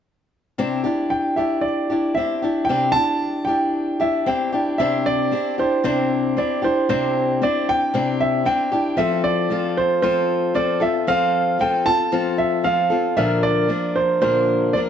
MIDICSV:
0, 0, Header, 1, 3, 480
1, 0, Start_track
1, 0, Key_signature, 0, "major"
1, 0, Tempo, 524476
1, 536, Time_signature, 4, 2, 24, 8
1, 13631, End_track
2, 0, Start_track
2, 0, Title_t, "Grand piano"
2, 0, Program_c, 0, 0
2, 1008, Note_on_c, 0, 79, 74
2, 1237, Note_off_c, 0, 79, 0
2, 1247, Note_on_c, 0, 76, 64
2, 1477, Note_on_c, 0, 74, 70
2, 1501, Note_off_c, 0, 76, 0
2, 1964, Note_on_c, 0, 76, 79
2, 1985, Note_off_c, 0, 74, 0
2, 2423, Note_on_c, 0, 79, 83
2, 2469, Note_off_c, 0, 76, 0
2, 2671, Note_on_c, 0, 81, 110
2, 2691, Note_off_c, 0, 79, 0
2, 3134, Note_off_c, 0, 81, 0
2, 3155, Note_on_c, 0, 79, 82
2, 3667, Note_on_c, 0, 76, 75
2, 3896, Note_off_c, 0, 79, 0
2, 3910, Note_on_c, 0, 79, 78
2, 3913, Note_off_c, 0, 76, 0
2, 4376, Note_on_c, 0, 76, 81
2, 4402, Note_off_c, 0, 79, 0
2, 4628, Note_off_c, 0, 76, 0
2, 4632, Note_on_c, 0, 74, 95
2, 5075, Note_off_c, 0, 74, 0
2, 5120, Note_on_c, 0, 72, 76
2, 5340, Note_off_c, 0, 72, 0
2, 5354, Note_on_c, 0, 72, 76
2, 5841, Note_on_c, 0, 74, 74
2, 5843, Note_off_c, 0, 72, 0
2, 6079, Note_off_c, 0, 74, 0
2, 6081, Note_on_c, 0, 72, 76
2, 6300, Note_off_c, 0, 72, 0
2, 6313, Note_on_c, 0, 72, 80
2, 6802, Note_off_c, 0, 72, 0
2, 6802, Note_on_c, 0, 74, 83
2, 7039, Note_off_c, 0, 74, 0
2, 7039, Note_on_c, 0, 79, 99
2, 7509, Note_on_c, 0, 76, 83
2, 7524, Note_off_c, 0, 79, 0
2, 7728, Note_off_c, 0, 76, 0
2, 7745, Note_on_c, 0, 79, 94
2, 8214, Note_on_c, 0, 76, 84
2, 8237, Note_off_c, 0, 79, 0
2, 8455, Note_on_c, 0, 74, 90
2, 8464, Note_off_c, 0, 76, 0
2, 8945, Note_on_c, 0, 72, 82
2, 8951, Note_off_c, 0, 74, 0
2, 9161, Note_off_c, 0, 72, 0
2, 9175, Note_on_c, 0, 72, 82
2, 9658, Note_on_c, 0, 74, 84
2, 9671, Note_off_c, 0, 72, 0
2, 9901, Note_on_c, 0, 76, 86
2, 9905, Note_off_c, 0, 74, 0
2, 10123, Note_off_c, 0, 76, 0
2, 10142, Note_on_c, 0, 77, 91
2, 10586, Note_off_c, 0, 77, 0
2, 10623, Note_on_c, 0, 79, 90
2, 10852, Note_on_c, 0, 81, 98
2, 10867, Note_off_c, 0, 79, 0
2, 11301, Note_off_c, 0, 81, 0
2, 11332, Note_on_c, 0, 76, 79
2, 11572, Note_on_c, 0, 77, 88
2, 11582, Note_off_c, 0, 76, 0
2, 12051, Note_on_c, 0, 76, 83
2, 12069, Note_off_c, 0, 77, 0
2, 12291, Note_on_c, 0, 74, 91
2, 12302, Note_off_c, 0, 76, 0
2, 12773, Note_on_c, 0, 72, 79
2, 12789, Note_off_c, 0, 74, 0
2, 12998, Note_off_c, 0, 72, 0
2, 13012, Note_on_c, 0, 72, 81
2, 13484, Note_on_c, 0, 74, 86
2, 13510, Note_off_c, 0, 72, 0
2, 13540, Note_off_c, 0, 74, 0
2, 13631, End_track
3, 0, Start_track
3, 0, Title_t, "Steel-string acoustic guitar"
3, 0, Program_c, 1, 25
3, 533, Note_on_c, 1, 48, 73
3, 536, Note_on_c, 1, 60, 76
3, 539, Note_on_c, 1, 64, 75
3, 544, Note_on_c, 1, 62, 79
3, 544, Note_on_c, 1, 67, 80
3, 754, Note_off_c, 1, 67, 0
3, 763, Note_off_c, 1, 62, 0
3, 765, Note_on_c, 1, 67, 50
3, 774, Note_off_c, 1, 64, 0
3, 774, Note_on_c, 1, 62, 47
3, 776, Note_off_c, 1, 48, 0
3, 777, Note_off_c, 1, 60, 0
3, 785, Note_on_c, 1, 64, 44
3, 1251, Note_off_c, 1, 67, 0
3, 1255, Note_on_c, 1, 67, 49
3, 1259, Note_off_c, 1, 62, 0
3, 1262, Note_on_c, 1, 62, 43
3, 1268, Note_off_c, 1, 64, 0
3, 1272, Note_on_c, 1, 64, 42
3, 1732, Note_off_c, 1, 67, 0
3, 1736, Note_on_c, 1, 67, 49
3, 1742, Note_off_c, 1, 62, 0
3, 1746, Note_on_c, 1, 62, 42
3, 1752, Note_off_c, 1, 64, 0
3, 1756, Note_on_c, 1, 64, 41
3, 1979, Note_off_c, 1, 67, 0
3, 1980, Note_off_c, 1, 64, 0
3, 1983, Note_on_c, 1, 60, 53
3, 1984, Note_off_c, 1, 62, 0
3, 1991, Note_on_c, 1, 64, 59
3, 1994, Note_on_c, 1, 62, 55
3, 2002, Note_on_c, 1, 67, 59
3, 2206, Note_off_c, 1, 67, 0
3, 2217, Note_off_c, 1, 62, 0
3, 2217, Note_on_c, 1, 67, 49
3, 2223, Note_off_c, 1, 60, 0
3, 2223, Note_off_c, 1, 64, 0
3, 2228, Note_on_c, 1, 62, 45
3, 2234, Note_on_c, 1, 64, 43
3, 2457, Note_off_c, 1, 64, 0
3, 2460, Note_off_c, 1, 67, 0
3, 2462, Note_on_c, 1, 48, 72
3, 2463, Note_off_c, 1, 62, 0
3, 2466, Note_on_c, 1, 60, 68
3, 2468, Note_on_c, 1, 64, 69
3, 2473, Note_on_c, 1, 67, 74
3, 2474, Note_on_c, 1, 62, 75
3, 2684, Note_off_c, 1, 67, 0
3, 2695, Note_on_c, 1, 67, 49
3, 2697, Note_off_c, 1, 62, 0
3, 2703, Note_off_c, 1, 48, 0
3, 2703, Note_off_c, 1, 64, 0
3, 2705, Note_off_c, 1, 60, 0
3, 2708, Note_on_c, 1, 62, 47
3, 2714, Note_on_c, 1, 64, 37
3, 3167, Note_off_c, 1, 67, 0
3, 3175, Note_off_c, 1, 62, 0
3, 3178, Note_on_c, 1, 67, 52
3, 3184, Note_off_c, 1, 64, 0
3, 3186, Note_on_c, 1, 62, 49
3, 3195, Note_on_c, 1, 64, 40
3, 3646, Note_off_c, 1, 67, 0
3, 3657, Note_off_c, 1, 62, 0
3, 3657, Note_on_c, 1, 67, 50
3, 3664, Note_off_c, 1, 64, 0
3, 3668, Note_on_c, 1, 62, 44
3, 3675, Note_on_c, 1, 64, 40
3, 3896, Note_off_c, 1, 64, 0
3, 3901, Note_off_c, 1, 67, 0
3, 3901, Note_on_c, 1, 60, 64
3, 3902, Note_off_c, 1, 62, 0
3, 3907, Note_on_c, 1, 64, 66
3, 3913, Note_on_c, 1, 62, 66
3, 3919, Note_on_c, 1, 67, 67
3, 4130, Note_off_c, 1, 67, 0
3, 4141, Note_on_c, 1, 67, 58
3, 4142, Note_off_c, 1, 62, 0
3, 4143, Note_off_c, 1, 60, 0
3, 4146, Note_off_c, 1, 64, 0
3, 4153, Note_on_c, 1, 62, 57
3, 4160, Note_on_c, 1, 64, 47
3, 4382, Note_off_c, 1, 64, 0
3, 4383, Note_off_c, 1, 67, 0
3, 4384, Note_off_c, 1, 62, 0
3, 4384, Note_on_c, 1, 48, 67
3, 4389, Note_on_c, 1, 60, 74
3, 4393, Note_on_c, 1, 64, 74
3, 4395, Note_on_c, 1, 62, 86
3, 4399, Note_on_c, 1, 67, 82
3, 4858, Note_off_c, 1, 64, 0
3, 4860, Note_off_c, 1, 60, 0
3, 4864, Note_on_c, 1, 60, 53
3, 4865, Note_off_c, 1, 48, 0
3, 4865, Note_off_c, 1, 62, 0
3, 4867, Note_off_c, 1, 67, 0
3, 4869, Note_on_c, 1, 64, 56
3, 4876, Note_on_c, 1, 62, 62
3, 4878, Note_on_c, 1, 67, 59
3, 5095, Note_off_c, 1, 67, 0
3, 5102, Note_off_c, 1, 62, 0
3, 5105, Note_off_c, 1, 60, 0
3, 5106, Note_on_c, 1, 67, 45
3, 5107, Note_off_c, 1, 64, 0
3, 5113, Note_on_c, 1, 62, 45
3, 5119, Note_on_c, 1, 64, 39
3, 5340, Note_off_c, 1, 64, 0
3, 5341, Note_off_c, 1, 62, 0
3, 5341, Note_on_c, 1, 48, 68
3, 5345, Note_off_c, 1, 67, 0
3, 5345, Note_on_c, 1, 60, 72
3, 5351, Note_on_c, 1, 64, 80
3, 5352, Note_on_c, 1, 62, 82
3, 5355, Note_on_c, 1, 67, 78
3, 5822, Note_off_c, 1, 60, 0
3, 5823, Note_off_c, 1, 48, 0
3, 5823, Note_off_c, 1, 64, 0
3, 5826, Note_on_c, 1, 60, 53
3, 5828, Note_off_c, 1, 62, 0
3, 5830, Note_off_c, 1, 67, 0
3, 5834, Note_on_c, 1, 64, 58
3, 5838, Note_on_c, 1, 62, 56
3, 5840, Note_on_c, 1, 67, 58
3, 6046, Note_off_c, 1, 67, 0
3, 6055, Note_off_c, 1, 62, 0
3, 6057, Note_on_c, 1, 67, 50
3, 6064, Note_off_c, 1, 64, 0
3, 6065, Note_off_c, 1, 60, 0
3, 6066, Note_on_c, 1, 62, 46
3, 6075, Note_on_c, 1, 64, 43
3, 6301, Note_off_c, 1, 67, 0
3, 6302, Note_off_c, 1, 64, 0
3, 6305, Note_off_c, 1, 62, 0
3, 6307, Note_on_c, 1, 48, 76
3, 6308, Note_on_c, 1, 60, 79
3, 6313, Note_on_c, 1, 64, 82
3, 6315, Note_on_c, 1, 62, 78
3, 6316, Note_on_c, 1, 67, 80
3, 6780, Note_off_c, 1, 64, 0
3, 6783, Note_off_c, 1, 60, 0
3, 6785, Note_off_c, 1, 48, 0
3, 6786, Note_off_c, 1, 62, 0
3, 6787, Note_on_c, 1, 60, 53
3, 6789, Note_off_c, 1, 67, 0
3, 6791, Note_on_c, 1, 64, 59
3, 6797, Note_on_c, 1, 62, 61
3, 6803, Note_on_c, 1, 67, 61
3, 7261, Note_off_c, 1, 64, 0
3, 7263, Note_off_c, 1, 62, 0
3, 7263, Note_off_c, 1, 67, 0
3, 7264, Note_on_c, 1, 48, 77
3, 7266, Note_off_c, 1, 60, 0
3, 7270, Note_on_c, 1, 60, 70
3, 7272, Note_on_c, 1, 64, 70
3, 7274, Note_on_c, 1, 62, 74
3, 7274, Note_on_c, 1, 67, 78
3, 7731, Note_off_c, 1, 64, 0
3, 7732, Note_off_c, 1, 60, 0
3, 7736, Note_on_c, 1, 60, 53
3, 7739, Note_off_c, 1, 62, 0
3, 7741, Note_off_c, 1, 67, 0
3, 7742, Note_off_c, 1, 48, 0
3, 7742, Note_on_c, 1, 64, 60
3, 7750, Note_on_c, 1, 62, 66
3, 7752, Note_on_c, 1, 67, 66
3, 7966, Note_off_c, 1, 67, 0
3, 7976, Note_off_c, 1, 62, 0
3, 7977, Note_on_c, 1, 67, 55
3, 7978, Note_off_c, 1, 60, 0
3, 7982, Note_off_c, 1, 64, 0
3, 7987, Note_on_c, 1, 62, 49
3, 7992, Note_on_c, 1, 64, 42
3, 8207, Note_on_c, 1, 53, 73
3, 8213, Note_off_c, 1, 64, 0
3, 8216, Note_off_c, 1, 62, 0
3, 8216, Note_on_c, 1, 60, 77
3, 8219, Note_off_c, 1, 67, 0
3, 8220, Note_on_c, 1, 65, 75
3, 8225, Note_on_c, 1, 69, 81
3, 8690, Note_off_c, 1, 53, 0
3, 8691, Note_off_c, 1, 60, 0
3, 8694, Note_on_c, 1, 53, 55
3, 8700, Note_off_c, 1, 69, 0
3, 8702, Note_on_c, 1, 60, 54
3, 8704, Note_off_c, 1, 65, 0
3, 8707, Note_on_c, 1, 65, 62
3, 8711, Note_on_c, 1, 69, 66
3, 9169, Note_off_c, 1, 53, 0
3, 9170, Note_off_c, 1, 60, 0
3, 9172, Note_on_c, 1, 53, 69
3, 9173, Note_off_c, 1, 69, 0
3, 9181, Note_off_c, 1, 65, 0
3, 9181, Note_on_c, 1, 60, 75
3, 9184, Note_on_c, 1, 65, 77
3, 9184, Note_on_c, 1, 69, 83
3, 9643, Note_off_c, 1, 60, 0
3, 9645, Note_off_c, 1, 53, 0
3, 9649, Note_on_c, 1, 53, 58
3, 9654, Note_on_c, 1, 60, 58
3, 9656, Note_off_c, 1, 65, 0
3, 9656, Note_off_c, 1, 69, 0
3, 9659, Note_on_c, 1, 65, 60
3, 9667, Note_on_c, 1, 69, 62
3, 9873, Note_off_c, 1, 69, 0
3, 9882, Note_off_c, 1, 65, 0
3, 9884, Note_on_c, 1, 69, 55
3, 9891, Note_off_c, 1, 60, 0
3, 9893, Note_off_c, 1, 53, 0
3, 9893, Note_on_c, 1, 65, 50
3, 9902, Note_on_c, 1, 60, 44
3, 10128, Note_off_c, 1, 60, 0
3, 10131, Note_off_c, 1, 69, 0
3, 10134, Note_on_c, 1, 53, 70
3, 10135, Note_off_c, 1, 65, 0
3, 10139, Note_on_c, 1, 60, 83
3, 10144, Note_on_c, 1, 65, 75
3, 10146, Note_on_c, 1, 69, 81
3, 10605, Note_off_c, 1, 53, 0
3, 10606, Note_off_c, 1, 60, 0
3, 10609, Note_on_c, 1, 53, 54
3, 10617, Note_on_c, 1, 60, 52
3, 10622, Note_off_c, 1, 65, 0
3, 10622, Note_off_c, 1, 69, 0
3, 10625, Note_on_c, 1, 65, 54
3, 10631, Note_on_c, 1, 69, 61
3, 10841, Note_off_c, 1, 69, 0
3, 10852, Note_off_c, 1, 65, 0
3, 10852, Note_on_c, 1, 69, 50
3, 10853, Note_off_c, 1, 53, 0
3, 10857, Note_off_c, 1, 60, 0
3, 10863, Note_on_c, 1, 65, 45
3, 10870, Note_on_c, 1, 60, 43
3, 11083, Note_off_c, 1, 60, 0
3, 11086, Note_off_c, 1, 65, 0
3, 11091, Note_on_c, 1, 53, 71
3, 11094, Note_on_c, 1, 60, 75
3, 11095, Note_off_c, 1, 69, 0
3, 11097, Note_on_c, 1, 65, 77
3, 11104, Note_on_c, 1, 69, 75
3, 11560, Note_off_c, 1, 53, 0
3, 11560, Note_off_c, 1, 60, 0
3, 11563, Note_on_c, 1, 53, 54
3, 11571, Note_off_c, 1, 69, 0
3, 11571, Note_on_c, 1, 60, 58
3, 11575, Note_off_c, 1, 65, 0
3, 11578, Note_on_c, 1, 65, 58
3, 11582, Note_on_c, 1, 69, 63
3, 11794, Note_off_c, 1, 69, 0
3, 11805, Note_on_c, 1, 69, 52
3, 11807, Note_off_c, 1, 65, 0
3, 11810, Note_off_c, 1, 53, 0
3, 11814, Note_off_c, 1, 60, 0
3, 11818, Note_on_c, 1, 65, 48
3, 11823, Note_on_c, 1, 60, 45
3, 12049, Note_on_c, 1, 46, 75
3, 12049, Note_on_c, 1, 50, 73
3, 12051, Note_off_c, 1, 60, 0
3, 12051, Note_off_c, 1, 69, 0
3, 12054, Note_on_c, 1, 58, 80
3, 12055, Note_on_c, 1, 53, 73
3, 12056, Note_off_c, 1, 65, 0
3, 12059, Note_on_c, 1, 62, 79
3, 12060, Note_on_c, 1, 70, 73
3, 12512, Note_off_c, 1, 53, 0
3, 12517, Note_off_c, 1, 58, 0
3, 12523, Note_on_c, 1, 53, 51
3, 12528, Note_on_c, 1, 58, 50
3, 12530, Note_off_c, 1, 70, 0
3, 12531, Note_off_c, 1, 62, 0
3, 12533, Note_off_c, 1, 46, 0
3, 12533, Note_off_c, 1, 50, 0
3, 12535, Note_on_c, 1, 62, 59
3, 12541, Note_on_c, 1, 70, 55
3, 13004, Note_off_c, 1, 53, 0
3, 13006, Note_off_c, 1, 58, 0
3, 13010, Note_on_c, 1, 46, 73
3, 13014, Note_off_c, 1, 70, 0
3, 13014, Note_on_c, 1, 50, 74
3, 13015, Note_on_c, 1, 53, 76
3, 13017, Note_on_c, 1, 58, 74
3, 13019, Note_off_c, 1, 62, 0
3, 13022, Note_on_c, 1, 62, 80
3, 13025, Note_on_c, 1, 70, 78
3, 13485, Note_off_c, 1, 53, 0
3, 13491, Note_off_c, 1, 58, 0
3, 13494, Note_off_c, 1, 46, 0
3, 13496, Note_off_c, 1, 50, 0
3, 13496, Note_on_c, 1, 53, 55
3, 13502, Note_off_c, 1, 70, 0
3, 13502, Note_on_c, 1, 58, 61
3, 13506, Note_off_c, 1, 62, 0
3, 13510, Note_on_c, 1, 62, 62
3, 13517, Note_on_c, 1, 70, 58
3, 13631, Note_off_c, 1, 53, 0
3, 13631, Note_off_c, 1, 58, 0
3, 13631, Note_off_c, 1, 62, 0
3, 13631, Note_off_c, 1, 70, 0
3, 13631, End_track
0, 0, End_of_file